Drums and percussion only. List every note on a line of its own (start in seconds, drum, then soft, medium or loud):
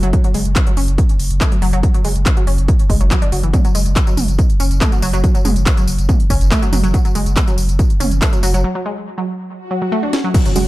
0.03 closed hi-hat medium
0.13 kick loud
0.13 closed hi-hat medium
0.24 closed hi-hat medium
0.34 open hi-hat loud
0.45 closed hi-hat medium
0.56 kick loud
0.56 clap loud
0.56 closed hi-hat medium
0.67 closed hi-hat medium
0.77 open hi-hat loud
0.88 closed hi-hat medium
0.98 kick loud
0.98 closed hi-hat medium
1.09 closed hi-hat medium
1.20 open hi-hat loud
1.31 closed hi-hat medium
1.41 kick loud
1.41 clap loud
1.41 closed hi-hat medium
1.52 closed hi-hat medium
1.62 open hi-hat loud
1.73 closed hi-hat medium
1.83 kick loud
1.83 closed hi-hat medium
1.94 closed hi-hat medium
2.05 open hi-hat loud
2.16 closed hi-hat medium
2.26 kick loud
2.26 clap loud
2.26 closed hi-hat medium
2.37 closed hi-hat medium
2.47 open hi-hat loud
2.58 closed hi-hat medium
2.68 kick loud
2.68 closed hi-hat medium
2.79 closed hi-hat medium
2.90 kick medium
2.90 open hi-hat loud
3.01 closed hi-hat medium
3.11 kick loud
3.11 clap loud
3.11 closed hi-hat medium
3.22 closed hi-hat medium
3.32 open hi-hat loud
3.43 closed hi-hat medium
3.53 kick loud
3.53 closed hi-hat medium
3.53 mid tom loud
3.53 tambourine soft
3.65 closed hi-hat soft
3.65 tambourine soft
3.75 open hi-hat loud
3.75 tambourine medium
3.86 closed hi-hat soft
3.86 tambourine soft
3.96 kick loud
3.96 clap loud
3.96 closed hi-hat medium
3.96 tambourine soft
4.07 closed hi-hat medium
4.07 tambourine soft
4.17 mid tom loud
4.17 open hi-hat loud
4.17 tambourine medium
4.28 closed hi-hat soft
4.28 tambourine soft
4.39 kick loud
4.39 closed hi-hat medium
4.39 tambourine soft
4.50 closed hi-hat medium
4.60 open hi-hat loud
4.60 tambourine medium
4.71 closed hi-hat medium
4.71 tambourine soft
4.81 kick loud
4.81 clap loud
4.81 closed hi-hat medium
4.81 mid tom medium
4.81 tambourine soft
4.92 closed hi-hat medium
4.92 tambourine soft
5.02 open hi-hat loud
5.02 tambourine medium
5.13 closed hi-hat medium
5.13 tambourine soft
5.24 kick loud
5.24 closed hi-hat medium
5.24 tambourine soft
5.35 closed hi-hat soft
5.35 tambourine soft
5.45 mid tom loud
5.45 open hi-hat loud
5.45 tambourine medium
5.56 closed hi-hat medium
5.56 tambourine soft
5.66 kick loud
5.66 clap loud
5.66 closed hi-hat medium
5.66 tambourine soft
5.77 closed hi-hat medium
5.77 tambourine soft
5.88 open hi-hat loud
5.88 tambourine medium
5.99 closed hi-hat medium
5.99 tambourine soft
6.09 kick loud
6.09 closed hi-hat medium
6.09 mid tom medium
6.09 tambourine soft
6.20 closed hi-hat soft
6.30 kick medium
6.30 open hi-hat loud
6.30 tambourine medium
6.41 closed hi-hat medium
6.41 tambourine soft
6.51 kick loud
6.51 clap loud
6.51 closed hi-hat medium
6.51 tambourine soft
6.62 closed hi-hat medium
6.62 tambourine soft
6.73 mid tom loud
6.73 open hi-hat loud
6.73 tambourine medium
6.84 closed hi-hat medium
6.84 tambourine soft
6.94 kick loud
6.94 closed hi-hat medium
6.94 tambourine soft
7.05 closed hi-hat soft
7.05 tambourine soft
7.15 open hi-hat loud
7.15 tambourine medium
7.26 closed hi-hat medium
7.26 tambourine soft
7.36 kick loud
7.36 clap loud
7.36 closed hi-hat medium
7.36 mid tom medium
7.36 tambourine soft
7.48 closed hi-hat medium
7.48 tambourine soft
7.58 open hi-hat loud
7.58 tambourine medium
7.69 closed hi-hat medium
7.69 tambourine soft
7.79 kick loud
7.79 closed hi-hat medium
7.79 tambourine soft
7.90 closed hi-hat medium
8.00 mid tom loud
8.00 open hi-hat loud
8.00 tambourine medium
8.11 closed hi-hat medium
8.11 tambourine soft
8.22 kick loud
8.22 clap loud
8.22 closed hi-hat medium
8.22 tambourine soft
8.33 closed hi-hat medium
8.33 tambourine soft
8.43 open hi-hat loud
8.43 tambourine medium
8.54 closed hi-hat medium
8.54 tambourine soft
10.13 snare medium
10.34 kick loud
10.34 closed hi-hat medium
10.34 crash loud
10.34 tambourine soft
10.45 closed hi-hat medium
10.45 tambourine soft
10.56 open hi-hat loud
10.56 tambourine medium